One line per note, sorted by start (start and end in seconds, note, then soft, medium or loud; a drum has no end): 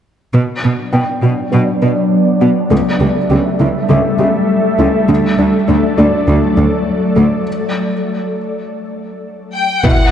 0.33 0.42 B2 soft
0.33 2.67 F#3 soft
0.33 2.67 B3 soft
0.33 0.52 B3 medium
0.33 2.67 D4 soft
0.33 2.67 D5 soft
0.64 0.72 B2 soft
0.64 0.81 B4 soft
0.93 1.01 B2 soft
0.93 1.11 B4 soft
0.93 2.67 G5 soft
1.23 1.31 B2 soft
1.23 1.41 F#4 soft
1.52 1.61 B2 soft
1.52 1.70 B3 medium
1.82 1.90 B2 soft
1.82 2.00 B4 soft
2.41 2.49 B2 soft
2.41 2.59 F#4 soft
2.71 2.79 C#2 soft
2.71 5.09 G3 soft
2.71 2.89 A3 medium
2.71 7.46 A3 soft
2.71 7.46 A4 soft
2.71 5.09 E5 soft
3.01 3.09 C#2 soft
3.01 3.19 G4 soft
3.31 3.39 C#2 soft
3.31 3.49 G4 soft
3.60 3.68 C#2 soft
3.60 3.78 E4 soft
3.90 3.98 C#2 soft
3.90 4.08 A3 medium
3.90 5.65 E5 soft
4.19 4.27 C#2 soft
4.19 4.38 G4 soft
4.79 4.87 C#2 soft
4.79 4.97 E4 soft
5.09 5.17 D2 soft
5.09 5.27 D3 medium
5.09 7.47 F#3 medium
5.09 7.47 D5 soft
5.39 5.47 D2 soft
5.39 5.57 D4 soft
5.68 5.77 D2 soft
5.68 5.86 D4 soft
5.98 6.06 D2 soft
5.98 6.16 A3 medium
5.98 7.43 D4 soft
5.98 7.42 D5 soft
6.28 6.36 D2 soft
6.28 6.46 D3 medium
6.57 6.65 D2 soft
6.57 6.75 D4 soft
7.16 7.25 D2 soft
7.16 7.34 A3 soft
9.54 9.82 G5 soft
9.84 9.92 B2 soft
9.84 10.11 F#3 soft
9.84 10.02 B3 medium
9.84 10.11 B3 soft
9.84 10.11 E4 soft
9.84 10.11 B4 soft
9.84 10.11 D5 soft
9.84 10.11 E5 soft
9.84 10.11 F#5 soft
9.84 impact soft